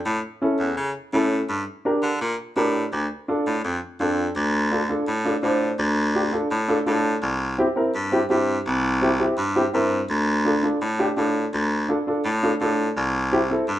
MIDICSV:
0, 0, Header, 1, 3, 480
1, 0, Start_track
1, 0, Key_signature, -1, "minor"
1, 0, Tempo, 358423
1, 79, Time_signature, 4, 2, 24, 8
1, 5842, Key_signature, -1, "minor"
1, 18472, End_track
2, 0, Start_track
2, 0, Title_t, "Upright piano"
2, 0, Program_c, 0, 0
2, 556, Note_on_c, 0, 61, 80
2, 560, Note_on_c, 0, 64, 69
2, 568, Note_on_c, 0, 69, 88
2, 894, Note_off_c, 0, 61, 0
2, 896, Note_off_c, 0, 64, 0
2, 900, Note_off_c, 0, 69, 0
2, 1514, Note_on_c, 0, 61, 78
2, 1520, Note_on_c, 0, 64, 69
2, 1522, Note_on_c, 0, 69, 88
2, 1853, Note_off_c, 0, 61, 0
2, 1856, Note_off_c, 0, 64, 0
2, 1857, Note_off_c, 0, 69, 0
2, 2479, Note_on_c, 0, 62, 80
2, 2485, Note_on_c, 0, 67, 73
2, 2489, Note_on_c, 0, 70, 84
2, 2816, Note_off_c, 0, 62, 0
2, 2819, Note_off_c, 0, 67, 0
2, 2821, Note_off_c, 0, 70, 0
2, 3432, Note_on_c, 0, 62, 80
2, 3437, Note_on_c, 0, 67, 72
2, 3443, Note_on_c, 0, 70, 90
2, 3773, Note_off_c, 0, 62, 0
2, 3775, Note_off_c, 0, 67, 0
2, 3778, Note_off_c, 0, 70, 0
2, 4396, Note_on_c, 0, 62, 82
2, 4401, Note_on_c, 0, 65, 74
2, 4407, Note_on_c, 0, 69, 85
2, 4735, Note_off_c, 0, 62, 0
2, 4737, Note_off_c, 0, 65, 0
2, 4740, Note_off_c, 0, 69, 0
2, 5357, Note_on_c, 0, 62, 75
2, 5363, Note_on_c, 0, 65, 71
2, 5370, Note_on_c, 0, 69, 81
2, 5695, Note_off_c, 0, 62, 0
2, 5698, Note_off_c, 0, 65, 0
2, 5702, Note_off_c, 0, 69, 0
2, 6313, Note_on_c, 0, 62, 79
2, 6320, Note_on_c, 0, 65, 73
2, 6325, Note_on_c, 0, 69, 84
2, 6402, Note_off_c, 0, 62, 0
2, 6405, Note_off_c, 0, 65, 0
2, 6408, Note_off_c, 0, 69, 0
2, 6551, Note_on_c, 0, 62, 71
2, 6554, Note_on_c, 0, 65, 65
2, 6562, Note_on_c, 0, 69, 82
2, 6724, Note_off_c, 0, 62, 0
2, 6726, Note_off_c, 0, 65, 0
2, 6730, Note_off_c, 0, 69, 0
2, 7028, Note_on_c, 0, 62, 80
2, 7036, Note_on_c, 0, 65, 75
2, 7042, Note_on_c, 0, 69, 89
2, 7119, Note_off_c, 0, 62, 0
2, 7123, Note_off_c, 0, 65, 0
2, 7126, Note_off_c, 0, 69, 0
2, 7267, Note_on_c, 0, 62, 81
2, 7271, Note_on_c, 0, 65, 73
2, 7279, Note_on_c, 0, 72, 85
2, 7610, Note_off_c, 0, 62, 0
2, 7613, Note_off_c, 0, 65, 0
2, 7617, Note_off_c, 0, 72, 0
2, 8230, Note_on_c, 0, 62, 78
2, 8233, Note_on_c, 0, 65, 67
2, 8242, Note_on_c, 0, 67, 86
2, 8320, Note_off_c, 0, 62, 0
2, 8321, Note_off_c, 0, 65, 0
2, 8326, Note_off_c, 0, 67, 0
2, 8466, Note_on_c, 0, 62, 73
2, 8473, Note_on_c, 0, 65, 69
2, 8477, Note_on_c, 0, 69, 85
2, 8642, Note_off_c, 0, 62, 0
2, 8646, Note_off_c, 0, 65, 0
2, 8647, Note_off_c, 0, 69, 0
2, 8950, Note_on_c, 0, 62, 85
2, 8955, Note_on_c, 0, 65, 82
2, 8958, Note_on_c, 0, 69, 97
2, 9040, Note_off_c, 0, 62, 0
2, 9043, Note_off_c, 0, 65, 0
2, 9044, Note_off_c, 0, 69, 0
2, 9188, Note_on_c, 0, 62, 79
2, 9192, Note_on_c, 0, 65, 72
2, 9200, Note_on_c, 0, 69, 85
2, 9531, Note_off_c, 0, 62, 0
2, 9533, Note_off_c, 0, 65, 0
2, 9538, Note_off_c, 0, 69, 0
2, 10154, Note_on_c, 0, 60, 85
2, 10160, Note_on_c, 0, 64, 76
2, 10168, Note_on_c, 0, 67, 92
2, 10242, Note_off_c, 0, 60, 0
2, 10245, Note_off_c, 0, 64, 0
2, 10249, Note_off_c, 0, 67, 0
2, 10389, Note_on_c, 0, 60, 71
2, 10399, Note_on_c, 0, 64, 71
2, 10402, Note_on_c, 0, 70, 82
2, 10564, Note_off_c, 0, 60, 0
2, 10569, Note_off_c, 0, 64, 0
2, 10570, Note_off_c, 0, 70, 0
2, 10872, Note_on_c, 0, 60, 83
2, 10879, Note_on_c, 0, 64, 71
2, 10882, Note_on_c, 0, 67, 95
2, 10961, Note_off_c, 0, 60, 0
2, 10965, Note_off_c, 0, 64, 0
2, 10967, Note_off_c, 0, 67, 0
2, 11107, Note_on_c, 0, 60, 77
2, 11114, Note_on_c, 0, 64, 74
2, 11117, Note_on_c, 0, 67, 88
2, 11451, Note_off_c, 0, 60, 0
2, 11454, Note_off_c, 0, 64, 0
2, 11456, Note_off_c, 0, 67, 0
2, 12077, Note_on_c, 0, 60, 80
2, 12077, Note_on_c, 0, 64, 76
2, 12085, Note_on_c, 0, 67, 90
2, 12164, Note_off_c, 0, 60, 0
2, 12164, Note_off_c, 0, 64, 0
2, 12168, Note_off_c, 0, 67, 0
2, 12314, Note_on_c, 0, 60, 72
2, 12316, Note_on_c, 0, 64, 70
2, 12324, Note_on_c, 0, 67, 84
2, 12486, Note_off_c, 0, 60, 0
2, 12488, Note_off_c, 0, 64, 0
2, 12492, Note_off_c, 0, 67, 0
2, 12798, Note_on_c, 0, 60, 84
2, 12802, Note_on_c, 0, 64, 74
2, 12807, Note_on_c, 0, 67, 93
2, 12884, Note_off_c, 0, 60, 0
2, 12887, Note_off_c, 0, 64, 0
2, 12889, Note_off_c, 0, 67, 0
2, 13037, Note_on_c, 0, 60, 79
2, 13046, Note_on_c, 0, 64, 66
2, 13050, Note_on_c, 0, 70, 83
2, 13376, Note_off_c, 0, 60, 0
2, 13381, Note_off_c, 0, 64, 0
2, 13383, Note_off_c, 0, 70, 0
2, 13995, Note_on_c, 0, 62, 83
2, 14002, Note_on_c, 0, 65, 69
2, 14007, Note_on_c, 0, 69, 88
2, 14083, Note_off_c, 0, 62, 0
2, 14087, Note_off_c, 0, 65, 0
2, 14089, Note_off_c, 0, 69, 0
2, 14233, Note_on_c, 0, 62, 77
2, 14239, Note_on_c, 0, 65, 62
2, 14242, Note_on_c, 0, 69, 75
2, 14406, Note_off_c, 0, 62, 0
2, 14410, Note_off_c, 0, 65, 0
2, 14411, Note_off_c, 0, 69, 0
2, 14718, Note_on_c, 0, 62, 82
2, 14721, Note_on_c, 0, 65, 73
2, 14726, Note_on_c, 0, 67, 94
2, 14805, Note_off_c, 0, 62, 0
2, 14807, Note_off_c, 0, 65, 0
2, 14809, Note_off_c, 0, 67, 0
2, 14956, Note_on_c, 0, 62, 82
2, 14961, Note_on_c, 0, 65, 76
2, 14964, Note_on_c, 0, 69, 80
2, 15296, Note_off_c, 0, 62, 0
2, 15298, Note_off_c, 0, 65, 0
2, 15300, Note_off_c, 0, 69, 0
2, 15919, Note_on_c, 0, 62, 81
2, 15922, Note_on_c, 0, 65, 75
2, 15928, Note_on_c, 0, 69, 89
2, 16005, Note_off_c, 0, 62, 0
2, 16007, Note_off_c, 0, 65, 0
2, 16010, Note_off_c, 0, 69, 0
2, 16165, Note_on_c, 0, 62, 75
2, 16172, Note_on_c, 0, 65, 69
2, 16176, Note_on_c, 0, 69, 83
2, 16332, Note_off_c, 0, 62, 0
2, 16336, Note_off_c, 0, 65, 0
2, 16338, Note_off_c, 0, 69, 0
2, 16645, Note_on_c, 0, 62, 80
2, 16650, Note_on_c, 0, 65, 79
2, 16655, Note_on_c, 0, 69, 93
2, 16729, Note_off_c, 0, 62, 0
2, 16731, Note_off_c, 0, 65, 0
2, 16734, Note_off_c, 0, 69, 0
2, 16886, Note_on_c, 0, 62, 75
2, 16892, Note_on_c, 0, 65, 69
2, 16895, Note_on_c, 0, 69, 95
2, 17221, Note_off_c, 0, 62, 0
2, 17224, Note_off_c, 0, 65, 0
2, 17225, Note_off_c, 0, 69, 0
2, 17838, Note_on_c, 0, 60, 82
2, 17840, Note_on_c, 0, 64, 77
2, 17848, Note_on_c, 0, 67, 97
2, 17925, Note_off_c, 0, 60, 0
2, 17926, Note_off_c, 0, 64, 0
2, 17930, Note_off_c, 0, 67, 0
2, 18080, Note_on_c, 0, 60, 73
2, 18088, Note_on_c, 0, 64, 70
2, 18092, Note_on_c, 0, 69, 83
2, 18250, Note_off_c, 0, 60, 0
2, 18254, Note_off_c, 0, 64, 0
2, 18256, Note_off_c, 0, 69, 0
2, 18472, End_track
3, 0, Start_track
3, 0, Title_t, "Baritone saxophone"
3, 0, Program_c, 1, 67
3, 74, Note_on_c, 1, 45, 94
3, 268, Note_off_c, 1, 45, 0
3, 795, Note_on_c, 1, 40, 78
3, 989, Note_off_c, 1, 40, 0
3, 1033, Note_on_c, 1, 49, 90
3, 1228, Note_off_c, 1, 49, 0
3, 1518, Note_on_c, 1, 45, 88
3, 1903, Note_off_c, 1, 45, 0
3, 1997, Note_on_c, 1, 43, 92
3, 2190, Note_off_c, 1, 43, 0
3, 2714, Note_on_c, 1, 50, 82
3, 2909, Note_off_c, 1, 50, 0
3, 2959, Note_on_c, 1, 46, 101
3, 3152, Note_off_c, 1, 46, 0
3, 3438, Note_on_c, 1, 45, 87
3, 3824, Note_off_c, 1, 45, 0
3, 3921, Note_on_c, 1, 38, 90
3, 4113, Note_off_c, 1, 38, 0
3, 4644, Note_on_c, 1, 45, 81
3, 4835, Note_off_c, 1, 45, 0
3, 4882, Note_on_c, 1, 41, 94
3, 5074, Note_off_c, 1, 41, 0
3, 5360, Note_on_c, 1, 41, 82
3, 5745, Note_off_c, 1, 41, 0
3, 5840, Note_on_c, 1, 38, 106
3, 6609, Note_off_c, 1, 38, 0
3, 6798, Note_on_c, 1, 45, 94
3, 7184, Note_off_c, 1, 45, 0
3, 7274, Note_on_c, 1, 45, 83
3, 7661, Note_off_c, 1, 45, 0
3, 7754, Note_on_c, 1, 38, 113
3, 8525, Note_off_c, 1, 38, 0
3, 8719, Note_on_c, 1, 45, 89
3, 9104, Note_off_c, 1, 45, 0
3, 9202, Note_on_c, 1, 45, 95
3, 9586, Note_off_c, 1, 45, 0
3, 9677, Note_on_c, 1, 36, 97
3, 10158, Note_off_c, 1, 36, 0
3, 10645, Note_on_c, 1, 43, 92
3, 11028, Note_off_c, 1, 43, 0
3, 11118, Note_on_c, 1, 43, 90
3, 11504, Note_off_c, 1, 43, 0
3, 11603, Note_on_c, 1, 36, 114
3, 12371, Note_off_c, 1, 36, 0
3, 12560, Note_on_c, 1, 43, 85
3, 12945, Note_off_c, 1, 43, 0
3, 13045, Note_on_c, 1, 43, 81
3, 13429, Note_off_c, 1, 43, 0
3, 13519, Note_on_c, 1, 38, 107
3, 14289, Note_off_c, 1, 38, 0
3, 14484, Note_on_c, 1, 45, 91
3, 14868, Note_off_c, 1, 45, 0
3, 14966, Note_on_c, 1, 45, 87
3, 15349, Note_off_c, 1, 45, 0
3, 15446, Note_on_c, 1, 38, 113
3, 15925, Note_off_c, 1, 38, 0
3, 16404, Note_on_c, 1, 45, 96
3, 16788, Note_off_c, 1, 45, 0
3, 16886, Note_on_c, 1, 45, 84
3, 17270, Note_off_c, 1, 45, 0
3, 17366, Note_on_c, 1, 36, 99
3, 18134, Note_off_c, 1, 36, 0
3, 18325, Note_on_c, 1, 43, 91
3, 18472, Note_off_c, 1, 43, 0
3, 18472, End_track
0, 0, End_of_file